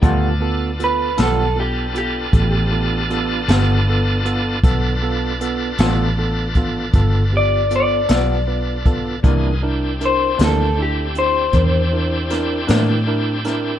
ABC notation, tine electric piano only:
X:1
M:12/8
L:1/8
Q:3/8=52
K:Gmix
V:1 name="Tine electric piano"
[B,FA] [B,FA] [B,FA] [B,FA] [B,FA] [B,FA] [B,FA] [B,FA] [B,FA] [B,FA] [B,FA] [B,FA] | [B,FA] [B,FA] [B,FA] [B,FA] [B,FA] [B,FA] [B,FA] [B,FG] [B,FA] [B,FB] [B,FB] [B,FA] | [DE_B] [DEB] [DEB] [DEB] [DEA] [DEG] [DEB] [DEB] [DEB] [DEB] [DEB] [DEB] |]